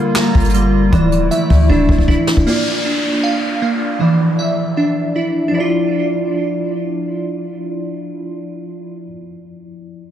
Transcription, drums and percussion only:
0.16 snare loud
0.16 clap medium
0.35 kick loud
0.35 closed hi-hat soft
0.40 closed hi-hat medium
0.44 closed hi-hat medium
0.49 closed hi-hat medium
0.54 closed hi-hat medium
0.93 kick loud
0.93 closed hi-hat medium
1.12 closed hi-hat medium
1.31 closed hi-hat medium
1.50 kick loud
1.50 open hi-hat soft
1.70 kick medium
1.89 kick medium
1.98 kick medium
2.08 kick loud
2.27 snare loud
2.37 kick loud

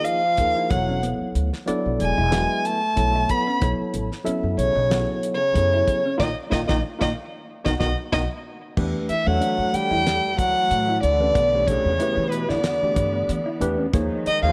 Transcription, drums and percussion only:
0.05 closed hi-hat medium
0.37 kick medium
0.37 closed hi-hat medium
0.71 kick medium
0.71 closed hi-hat medium
1.03 closed hi-hat medium
1.35 closed hi-hat medium
1.53 snare soft
1.68 closed hi-hat medium
2.00 closed hi-hat medium
2.32 snare loud
2.32 closed hi-hat medium
2.65 closed hi-hat medium
2.97 kick medium
2.97 closed hi-hat medium
3.29 kick medium
3.29 closed hi-hat medium
3.62 kick loud
3.62 closed hi-hat medium
3.94 closed hi-hat medium
4.12 snare soft
4.26 closed hi-hat medium
4.59 closed hi-hat medium
4.91 snare medium
4.91 closed hi-hat medium
5.23 closed hi-hat medium
5.55 kick medium
5.55 closed hi-hat medium
5.88 kick medium
5.88 closed hi-hat soft
6.20 kick medium
6.20 snare medium
6.52 kick medium
6.52 snare medium
6.69 kick medium
6.69 snare medium
7.01 kick medium
7.01 snare medium
7.66 kick medium
7.66 snare medium
7.80 kick medium
7.80 snare medium
8.12 kick medium
8.12 snare medium
8.77 kick loud
8.77 crash loud
9.09 closed hi-hat medium
9.42 closed hi-hat medium
9.74 closed hi-hat medium
10.07 snare medium
10.07 closed hi-hat medium
10.39 kick medium
10.39 closed hi-hat medium
10.71 closed hi-hat medium
11.03 closed hi-hat medium
11.35 kick loud
11.35 closed hi-hat medium
11.68 kick medium
11.68 closed hi-hat medium
12.00 closed hi-hat medium
12.32 closed hi-hat medium
12.50 snare soft
12.64 snare loud
12.64 closed hi-hat medium
12.96 kick medium
12.96 closed hi-hat medium
13.29 closed hi-hat medium
13.61 closed hi-hat medium
13.93 kick loud
13.93 closed hi-hat medium
14.26 closed hi-hat medium

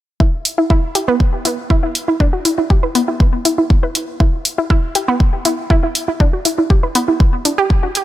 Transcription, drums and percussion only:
0.20 kick loud
0.45 open hi-hat medium
0.70 kick loud
0.95 open hi-hat medium
1.20 kick loud
1.45 open hi-hat medium
1.70 kick medium
1.95 open hi-hat medium
2.20 kick loud
2.45 open hi-hat medium
2.70 kick loud
2.95 open hi-hat medium
3.20 kick loud
3.45 open hi-hat loud
3.70 kick medium
3.95 open hi-hat medium
4.20 kick loud
4.45 open hi-hat loud
4.70 kick loud
4.95 open hi-hat loud
5.20 kick loud
5.45 open hi-hat loud
5.70 kick loud
5.95 open hi-hat loud
6.20 kick loud
6.45 open hi-hat loud
6.70 kick loud
6.95 open hi-hat loud
7.20 kick loud
7.45 open hi-hat loud
7.70 kick loud
7.95 open hi-hat medium

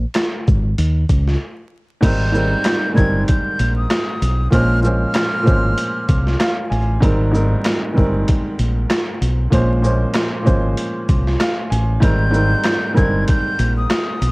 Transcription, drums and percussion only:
0.14 cross-stick medium
0.14 snare loud
0.14 closed hi-hat medium
0.47 kick loud
0.47 shaker medium
0.78 closed hi-hat medium
1.09 kick medium
1.09 closed hi-hat medium
1.09 shaker soft
1.27 snare soft
2.02 kick loud
2.02 closed hi-hat medium
2.02 crash loud
2.34 shaker medium
2.64 cross-stick medium
2.64 snare loud
2.64 closed hi-hat medium
2.97 kick loud
2.97 shaker medium
3.28 kick medium
3.28 closed hi-hat medium
3.59 closed hi-hat soft
3.59 shaker medium
3.90 cross-stick medium
3.90 snare loud
3.90 closed hi-hat medium
4.22 closed hi-hat medium
4.22 shaker medium
4.52 kick loud
4.52 closed hi-hat medium
4.84 shaker medium
5.14 cross-stick medium
5.14 snare loud
5.14 closed hi-hat medium
5.47 kick loud
5.47 shaker medium
5.78 closed hi-hat medium
6.09 kick medium
6.09 closed hi-hat medium
6.09 shaker medium
6.27 snare soft
6.40 cross-stick medium
6.40 snare loud
6.40 closed hi-hat medium
6.72 closed hi-hat medium
6.72 shaker medium
7.02 kick loud
7.02 closed hi-hat medium
7.34 shaker medium
7.64 cross-stick medium
7.64 snare loud
7.64 closed hi-hat medium
7.97 kick loud
7.97 shaker medium
8.28 kick medium
8.28 closed hi-hat medium
8.59 closed hi-hat medium
8.59 shaker medium
8.90 cross-stick medium
8.90 snare loud
8.90 closed hi-hat medium
9.22 closed hi-hat medium
9.22 shaker medium
9.52 kick loud
9.52 closed hi-hat medium
9.84 shaker medium
10.14 cross-stick medium
10.14 snare loud
10.14 closed hi-hat medium
10.47 kick loud
10.47 shaker medium
10.77 closed hi-hat medium
11.09 kick medium
11.09 closed hi-hat soft
11.09 shaker medium
11.27 snare soft
11.40 cross-stick medium
11.40 snare loud
11.40 closed hi-hat medium
11.72 closed hi-hat medium
11.72 shaker medium
12.02 kick loud
12.02 closed hi-hat medium
12.34 shaker medium
12.64 cross-stick medium
12.64 snare loud
12.64 closed hi-hat medium
12.97 kick loud
12.97 shaker medium
13.27 kick medium
13.27 closed hi-hat medium
13.59 closed hi-hat soft
13.59 shaker medium
13.90 cross-stick medium
13.90 snare loud
13.90 closed hi-hat medium
14.22 closed hi-hat medium
14.22 shaker medium

